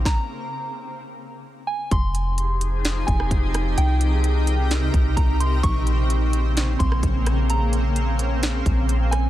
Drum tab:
HH |----------------|x-x-x-x-x-x-x-x-|x-x-x-x-x-x-x-x-|x-x-x-x-x-x-x-x-|
SD |o---------------|--------o--r--r-|--------o-------|--------o--r--r-|
BD |o---------------|o---------o-o---|----------o-o---|o---------o-o---|

HH |x-x-x-x-x-x-x-x-|
SD |--------o-----r-|
BD |----------o-----|